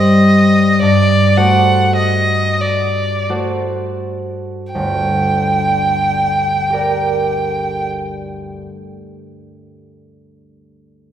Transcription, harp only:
0.00 0.81 G2 soft
0.00 0.85 G3 soft
0.00 0.85 G4 soft
0.00 1.37 C5 soft
0.82 4.72 G2 soft
1.37 3.28 A3 soft
1.37 3.29 F#4 soft
1.37 3.29 C5 soft
3.29 4.81 A3 soft
3.29 4.81 F#4 soft
3.29 4.81 C5 soft
4.75 8.65 G1 soft
4.75 8.65 D2 soft
6.70 9.84 G4 soft
6.70 9.87 A#4 soft
6.74 9.89 D5 soft

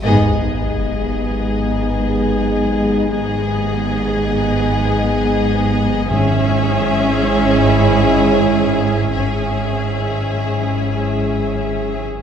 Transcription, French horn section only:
0.05 3.06 B3 medium
0.05 3.06 D#4 medium
3.10 5.95 B3 medium
3.10 5.95 D#4 medium
6.12 9.12 C#4 medium
6.12 9.12 E4 medium
9.16 11.92 C#4 medium
9.16 11.93 E4 medium

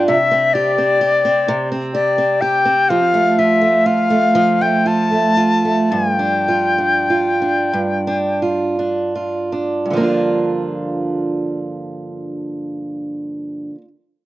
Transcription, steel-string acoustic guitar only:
0.00 0.16 G2 medium
0.00 0.16 D4 soft
0.00 0.16 F4 soft
0.08 1.47 C3 medium
0.31 0.78 C4 soft
0.55 1.00 G4 soft
0.78 1.24 C4 soft
1.01 1.93 G4 medium
1.25 1.71 C4 soft
1.48 2.99 C3 medium
1.72 2.18 C4 soft
1.95 2.41 G4 medium
2.18 2.65 C4 soft
2.42 2.99 G4 soft
2.65 3.14 C4 soft
2.90 4.34 F3 medium
3.14 3.60 A3 soft
3.39 3.85 F4 medium
3.61 4.09 A3 soft
3.86 4.85 F4 medium
4.10 4.60 A3 soft
4.35 7.76 F3 medium
4.61 5.10 A3 soft
4.86 5.37 F4 soft
5.11 5.64 A3 soft
5.37 6.48 F4 soft
5.65 6.03 A3 soft
5.92 7.71 G2 medium
6.19 6.78 D4 soft
6.48 7.10 F4 soft
6.78 7.41 D4 soft
7.10 8.42 F4 soft
7.42 8.07 D4 soft
7.73 9.84 G2 soft
8.07 8.78 D4 soft
8.42 9.15 F4 soft
8.79 9.52 D4 soft
9.15 10.03 F4 soft
9.52 10.00 D4 soft
9.86 13.70 G2 soft
9.90 13.75 D3 soft
9.90 13.78 F3 soft
9.97 13.81 A#3 soft
9.97 13.84 D4 soft
10.03 13.87 F4 soft

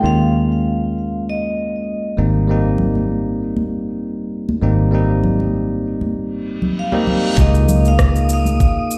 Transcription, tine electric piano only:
0.01 2.13 G#3 medium
0.01 2.14 A#3 medium
0.01 2.14 C#4 medium
0.01 2.15 F4 medium
2.17 2.45 G3 medium
2.17 2.45 A#3 medium
2.17 2.45 C4 medium
2.17 2.46 D#4 medium
2.48 4.59 G3 medium
2.48 4.60 A#3 medium
2.48 4.60 C4 medium
2.48 4.61 D#4 medium
4.62 4.89 G3 medium
4.62 4.90 A#3 medium
4.62 4.90 C4 medium
4.62 4.90 D#4 medium
4.91 6.89 G3 medium
4.91 6.90 A#3 medium
4.91 6.90 C4 medium
4.91 6.91 D#4 medium
6.92 7.34 G3 medium
6.92 7.35 A#3 medium
6.92 7.35 C4 medium
6.92 7.35 D#4 loud
7.37 8.98 A#3 medium
7.37 8.98 D#4 medium
7.37 8.98 F4 medium
7.37 8.98 G#4 medium

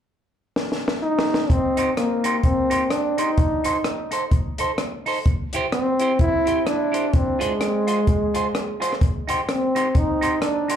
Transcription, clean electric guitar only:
1.77 1.88 D#4 medium
1.77 1.89 G4 medium
1.77 1.90 C5 medium
2.24 2.35 D#4 medium
2.24 2.36 G4 medium
2.24 2.36 C5 medium
2.70 2.82 D#4 medium
2.70 2.83 G4 medium
2.70 2.83 C5 medium
2.90 muted clean electric guitar stroke soft
3.18 3.29 D#4 medium
3.18 3.30 G4 medium
3.18 3.30 C5 medium
3.64 3.76 D#4 medium
3.64 3.77 A4 medium
3.64 3.77 C5 medium
4.11 4.23 D#4 medium
4.11 4.23 A4 medium
4.11 4.24 C5 medium
4.31 muted clean electric guitar stroke soft
4.59 4.70 D#4 medium
4.59 4.71 A4 medium
4.59 4.71 C5 medium
4.79 muted clean electric guitar stroke soft
5.06 5.17 D#4 medium
5.06 5.18 A4 medium
5.06 5.18 C5 medium
5.54 5.65 E4 medium
5.54 5.65 G4 loud
5.54 5.66 C5 loud
6.00 6.11 E4 medium
6.00 6.12 G4 medium
6.00 6.12 C5 medium
6.20 muted clean electric guitar stroke soft
6.46 6.58 E4 medium
6.46 6.58 G4 medium
6.46 6.59 C5 medium
6.65 muted clean electric guitar stroke soft
6.92 7.04 E4 medium
6.92 7.05 G4 medium
6.92 7.05 C5 medium
7.39 7.51 F4 medium
7.39 7.52 G#4 medium
7.39 7.52 C5 medium
7.87 7.99 F4 medium
7.87 7.99 G#4 medium
7.87 8.00 C5 medium
8.07 muted clean electric guitar stroke soft
8.34 8.46 F4 medium
8.34 8.46 G#4 medium
8.34 8.47 C5 medium
8.54 muted clean electric guitar stroke soft
8.80 8.92 F4 medium
8.80 8.93 G#4 medium
8.80 8.93 C5 loud
9.28 9.40 D#4 medium
9.28 9.40 G4 medium
9.28 9.41 C5 loud
9.75 9.87 D#4 medium
9.75 9.87 G4 medium
9.75 9.87 C5 medium
9.94 muted clean electric guitar stroke soft
10.21 10.33 D#4 medium
10.21 10.34 G4 medium
10.21 10.34 C5 medium
10.41 muted clean electric guitar stroke soft
10.68 10.76 D#4 medium
10.68 10.76 G4 medium
10.68 10.76 C5 medium

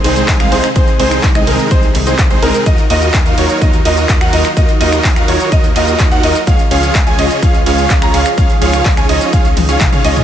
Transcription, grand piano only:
0.04 0.37 C5 loud
0.40 0.50 F5 loud
0.52 0.66 C5 loud
0.76 0.90 C5 loud
1.00 1.23 C5 loud
1.35 1.44 D#5 medium
1.47 1.68 A#4 medium
1.71 1.86 C5 loud
2.07 2.21 C5 medium
2.31 2.40 C5 medium
2.42 2.63 A#4 loud
2.66 2.81 D#5 loud
2.90 3.13 D#5 loud
3.26 3.35 F5 medium
3.38 3.59 C#5 medium
3.62 3.76 D#5 loud
3.85 4.18 D#5 loud
4.21 4.31 F#5 loud
4.33 4.47 D#5 loud
4.57 4.71 D#5 loud
4.81 5.04 D#5 loud
5.16 5.25 F5 medium
5.28 5.49 C#5 medium
5.52 5.66 D#5 loud
5.76 6.09 D#5 loud
6.12 6.22 F#5 loud
6.23 6.38 D#5 loud
6.47 6.62 F5 loud
6.71 6.94 F5 loud
7.07 7.16 G#5 medium
7.19 7.40 D#5 medium
7.43 7.57 F5 loud
7.66 7.99 F5 loud
8.02 8.12 A#5 loud
8.14 8.28 F5 loud
8.38 8.52 F5 loud
8.62 8.85 F5 loud
8.97 9.06 G#5 medium
9.09 9.30 D#5 medium
9.33 9.48 F5 loud
9.69 9.83 F5 medium
9.93 10.02 F5 loud
10.05 10.24 D#5 loud

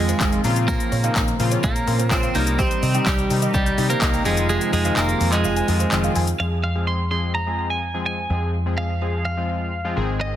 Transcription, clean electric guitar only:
0.00 0.40 G#3 medium
0.68 1.36 A#3 loud
1.64 2.13 A#3 loud
2.11 2.36 C4 loud
2.35 2.60 A#3 loud
2.59 3.08 C4 loud
3.06 3.53 G3 loud
3.54 3.89 G3 medium
3.90 4.25 A#3 loud
4.25 4.48 G#3 medium
4.49 4.72 G#3 medium
4.73 4.97 G#3 medium
4.97 5.32 A#3 medium
5.33 6.12 G#3 medium
6.40 6.46 F5 medium
6.64 6.87 F5 medium
6.87 7.10 C6 loud
7.11 7.34 C6 medium
7.35 7.70 A#5 medium
7.70 8.05 G#5 medium
8.06 8.51 G#5 medium
8.78 9.24 F5 loud
9.25 9.93 F5 loud
10.21 10.36 D#5 medium

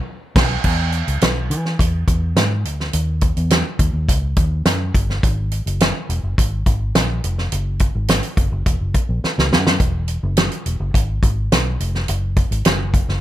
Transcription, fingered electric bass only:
0.36 0.56 B1 loud
0.64 1.01 E2 medium
1.08 1.20 C#2 medium
1.22 1.52 B1 medium
1.50 1.75 E3 medium
1.80 2.04 E2 medium
2.08 2.32 E2 medium
2.36 2.65 G#2 medium
2.65 2.89 D2 medium
2.94 3.30 D#2 medium
3.37 3.61 E2 medium
3.80 3.92 D#2 medium
3.93 4.06 D#2 medium
4.09 4.33 C#2 medium
4.37 4.62 D#2 medium
4.66 4.90 F#2 medium
4.95 5.19 G1 medium
5.23 5.60 G#1 loud
5.66 5.90 F#1 medium
6.09 6.21 E1 medium
6.23 6.35 F#1 medium
6.38 6.62 G#1 medium
6.67 6.91 G#1 medium
6.95 7.19 A#1 medium
7.24 7.48 F1 medium
7.52 7.89 F#1 medium
7.95 8.19 G#1 medium
8.38 8.50 F#1 medium
8.52 8.64 F#1 medium
8.66 8.78 E1 loud
8.81 8.93 F#1 medium
9.09 9.21 A#1 medium
9.24 muted fingered electric bass stroke soft
9.38 9.53 C#2 medium
9.52 9.76 F#2 medium
9.80 10.17 E1 medium
10.23 10.47 F#1 medium
10.66 10.78 E1 medium
10.80 10.92 F#1 medium
10.94 11.19 G#1 medium
11.23 11.47 G#1 medium
11.52 11.76 B1 loud
11.80 12.04 F1 medium
12.09 12.45 F#1 medium
12.51 12.63 G#1 loud
12.66 13.02 F#1 loud
13.09 13.21 F#1 medium

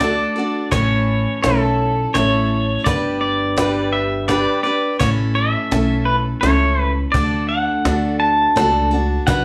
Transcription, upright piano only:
0.00 0.45 F#4 medium
0.00 0.46 A4 medium
0.00 0.46 D5 medium
1.43 1.89 E4 medium
1.43 1.89 A4 soft
1.43 1.89 C#5 medium
2.15 2.60 E4 medium
2.15 2.60 A4 medium
2.15 2.61 C#5 medium
3.58 4.03 D4 medium
3.58 4.03 G4 medium
3.58 4.03 B4 medium
4.28 4.74 D4 medium
4.28 4.74 G4 medium
4.28 4.74 B4 medium
5.71 6.17 C#4 medium
5.71 6.17 E4 medium
5.71 6.17 A4 medium
6.42 6.88 C#4 medium
6.42 6.88 E4 medium
6.42 6.88 A4 medium
7.85 8.30 D4 medium
7.85 8.31 F#4 medium
7.85 8.31 A4 medium
8.55 9.01 D4 medium
8.55 9.02 F#4 medium
8.55 9.02 A4 medium

